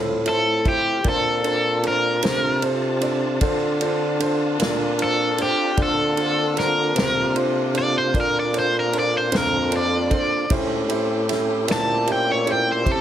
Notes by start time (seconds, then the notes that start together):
Already playing: A2 A3 C4 E4 F4 A4 C5
0.26 E4 F4 A4 C5, ride
0.65 E4 F4 G4 A4 C5, kick, ride
1.04 A#2 C4 D4 F4 A4 C5 A5, kick, ride
1.09 A4
1.44 D4 F4 A4 C5, ride
1.83 D4 F4 A4 C5, ride
1.88 A#4
2.22 C3 D4 F4 A4 C5, snare, ride
2.62 D4 F4 A4 C5, ride
3.01 D4 F4 A4 D5, ride
3.41 D3 D4 F4 A4 C5, kick, ride
3.81 D4 F4 A4 C5, ride
4.19 D4 F4 A4 C5, ride
4.59 A#2 D4 F4 A4 D5, snare, ride
4.98 D4 F4 A4 C5, ride
5.04 A4
5.38 D4 F4 A4 C5, ride
5.42 G4
5.77 D3 A#3 C4 D4 F4 A4 C5, kick, ride
5.83 A4
6.17 D4 F4 A4 C5, ride
6.56 D4 F4 A4 A#4 C5, snare, ride
6.95 C3 D4 F4 A4 C5, snare, ride
7.35 D4 F4 A4 C5, ride
7.73 D4 F4 A4 C5, ride
7.79 D5
7.98 C5
8.14 A#2 D4 F4 A4 D5, kick, ride
8.20 A#4
8.40 D5
8.53 D4 F4 A4 C5, ride
8.59 C5
8.80 A#4
8.92 D4 F4 A4 C5, ride
8.99 D5
9.18 C5
9.31 F2 D4 F4 A4 C5, snare, ride
9.37 A#4
9.71 D4 F4 A4 C5, ride
9.76 D5
10.10 D4 F4 A4 C5, kick, ride
10.49 A2 G#3 C#4 D4 E4 F4 G4 A4 C5, kick, ride
10.87 A3 C4 C#4 E4 G4 C5, ride
11.29 C#4 E4 G4 A4, snare, ride
11.67 A#2 C#4 E4 G4 C5, snare, ride
11.72 A5
12.07 C#4 E4 G4 C5, ride
12.12 G5
12.32 C#5
12.45 C#4 E4 G4 C5, ride
12.52 G5
12.72 C5
12.85 C3 C#4 E4 G4 C5, kick, ride
12.92 A4